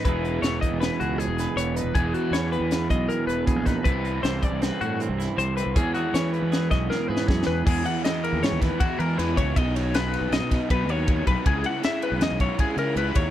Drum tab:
CC |------------------------------|------------------------------|------------------------------|------------------------------|
RD |------------------------------|------------------------------|------------------------------|------------------------------|
HH |x--x--x--x--x--x--x--x--x--x--|x--x--x--x--x--x--x--x--x--x--|x--x--x--x--x--x--x--x--x--x--|x--x--x--x--x--x--------------|
SD |------o-----o--------o--------|------o-----o--------------o--|------o-----o--------o--------|------o-----o--o--o---o-o-o---|
BD |o--------o--------------------|o--------------o--------o--o--|o--------o--------------------|o--------------o--------o-----|

CC |x-----------------------------|------------------------------|------------------------------|
RD |---x--x--x--x--x--x--x--x--x--|x--x--x--x--x--x--x--x--x--x--|x--x--x--x--x--x--x--x--x--x--|
HH |------------------------------|------------------------------|------------------------------|
SD |------o-----o--o--------o-----|---o--o--o--o--o--------------|------o-----o-----------------|
BD |o--------------o--o--------o--|o--------------o--o-----o--o--|o--------------o--o--------o--|